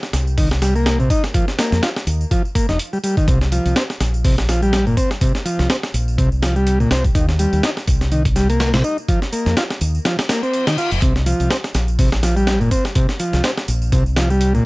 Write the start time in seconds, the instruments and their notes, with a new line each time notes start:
0.03 snare, tambourine
0.13 fingered electric bass C2, snare, closed hi-hat, tambourine
0.27 tambourine
0.38 transistor combo organ D#3, kick, open hi-hat, tambourine
0.51 snare, tambourine
0.62 transistor combo organ G3, snare, closed hi-hat, tambourine
0.75 transistor combo organ A#3, tambourine
0.86 snare, closed hi-hat, tambourine
1.00 fingered electric bass A#1, transistor combo organ C3, tambourine
1.10 transistor combo organ D#4, kick, closed hi-hat, tambourine
1.24 snare, tambourine
1.34 transistor combo organ F3, kick, closed hi-hat, tambourine
1.48 snare, tambourine
1.59 transistor combo organ A#3, snare, closed hi-hat, tambourine
1.72 fingered electric bass F2, snare, tambourine
1.82 transistor combo organ F4, snare, closed hi-hat, tambourine
1.96 snare, tambourine
2.07 fingered electric bass D#2, closed hi-hat, tambourine
2.21 tambourine
2.31 transistor combo organ F3, kick, closed hi-hat, tambourine
2.45 tambourine
2.55 transistor combo organ A#3, kick, closed hi-hat, tambourine
2.69 fingered electric bass F1, transistor combo organ D#4, snare, tambourine
2.79 closed hi-hat, tambourine
2.93 transistor combo organ G3, tambourine
3.04 transistor combo organ G3, closed hi-hat, tambourine
3.17 transistor combo organ D#3, kick, tambourine
3.28 fingered electric bass C2, transistor combo organ C3, kick, closed hi-hat, tambourine
3.41 snare, tambourine
3.52 transistor combo organ F3, closed hi-hat, tambourine
3.65 fingered electric bass C2, closed hi-hat, tambourine
3.76 transistor combo organ C4, snare, closed hi-hat, tambourine
3.90 snare, tambourine
4.00 fingered electric bass A#1, snare, closed hi-hat, tambourine
4.14 tambourine
4.24 transistor combo organ C3, kick, open hi-hat, tambourine
4.38 snare, tambourine
4.49 transistor combo organ F3, snare, closed hi-hat, tambourine
4.62 transistor combo organ G3, tambourine
4.73 snare, closed hi-hat, tambourine
4.87 fingered electric bass G1, transistor combo organ A#2, tambourine
4.97 transistor combo organ C4, kick, closed hi-hat, tambourine
5.11 snare, tambourine
5.21 transistor combo organ C3, kick, closed hi-hat, tambourine
5.35 snare, tambourine
5.45 transistor combo organ F3, closed hi-hat, tambourine
5.59 fingered electric bass C2, snare, tambourine
5.69 transistor combo organ C4, snare, closed hi-hat, tambourine
5.83 snare, tambourine
5.94 fingered electric bass A#1, closed hi-hat, tambourine
6.08 tambourine
6.18 fingered electric bass C2, transistor combo organ C3, kick, closed hi-hat, tambourine
6.32 tambourine
6.42 transistor combo organ F3, snare, closed hi-hat, tambourine
6.56 transistor combo organ G3, tambourine
6.67 closed hi-hat, tambourine
6.80 transistor combo organ A#2, tambourine
6.91 fingered electric bass C2, transistor combo organ C4, snare, closed hi-hat, tambourine
7.04 kick, tambourine
7.15 fingered electric bass D#2, transistor combo organ D#3, kick, closed hi-hat, tambourine
7.29 snare, tambourine
7.39 transistor combo organ G3, closed hi-hat, tambourine
7.53 fingered electric bass D#2, closed hi-hat, tambourine
7.63 transistor combo organ D#4, snare, closed hi-hat, tambourine
7.77 snare, tambourine
7.87 fingered electric bass C2, kick, closed hi-hat, tambourine
8.01 snare, tambourine
8.12 transistor combo organ D#3, closed hi-hat, tambourine
8.25 kick, closed hi-hat, tambourine
8.36 transistor combo organ G3, snare, tambourine
8.49 transistor combo organ A#3, closed hi-hat, tambourine
8.60 snare, closed hi-hat, tambourine
8.73 fingered electric bass A#1, transistor combo organ C3, snare, closed hi-hat, tambourine
8.84 transistor combo organ D#4, tambourine
8.98 tambourine
9.08 transistor combo organ F3, kick, closed hi-hat, tambourine
9.22 snare, tambourine
9.32 transistor combo organ A#3, closed hi-hat, tambourine
9.46 fingered electric bass F2, snare, tambourine
9.57 transistor combo organ F4, snare, closed hi-hat, tambourine
9.70 snare, tambourine
9.81 fingered electric bass D#2, closed hi-hat, tambourine
9.95 tambourine
10.05 transistor combo organ F3, snare, closed hi-hat, tambourine, reverse cymbal
10.19 snare, closed hi-hat, tambourine
10.29 transistor combo organ A#3, snare, closed hi-hat, tambourine
10.43 transistor combo organ C4, tambourine
10.53 closed hi-hat, tambourine
10.67 transistor combo organ D#3, snare, closed hi-hat, tambourine
10.78 transistor combo organ F4, tambourine
10.91 fingered electric bass F1, closed hi-hat, tambourine
11.02 fingered electric bass C2, transistor combo organ C3, kick, closed hi-hat, tambourine
11.16 snare, tambourine
11.26 transistor combo organ F3, closed hi-hat, tambourine
11.40 fingered electric bass C2, closed hi-hat, tambourine
11.50 transistor combo organ C4, snare, closed hi-hat, tambourine
11.64 snare, tambourine
11.74 fingered electric bass A#1, snare, closed hi-hat, tambourine
11.88 tambourine
11.99 transistor combo organ C3, kick, open hi-hat, tambourine
12.12 snare, tambourine
12.23 transistor combo organ F3, snare, closed hi-hat, tambourine
12.36 transistor combo organ G3, tambourine
12.47 snare, closed hi-hat, tambourine
12.60 fingered electric bass G1, transistor combo organ A#2, tambourine
12.71 transistor combo organ C4, kick, closed hi-hat, tambourine
12.85 snare, tambourine
12.95 transistor combo organ C3, kick, closed hi-hat, tambourine
13.09 snare, tambourine
13.19 transistor combo organ F3, closed hi-hat, tambourine
13.33 fingered electric bass C2, snare, tambourine
13.44 transistor combo organ C4, snare, closed hi-hat, tambourine
13.58 snare, tambourine
13.68 fingered electric bass A#1, closed hi-hat, tambourine
13.82 tambourine
13.92 fingered electric bass C2, transistor combo organ C3, kick, closed hi-hat, tambourine
14.06 tambourine
14.16 transistor combo organ F3, snare, closed hi-hat, tambourine
14.30 transistor combo organ G3, tambourine
14.41 closed hi-hat, tambourine
14.55 transistor combo organ A#2, tambourine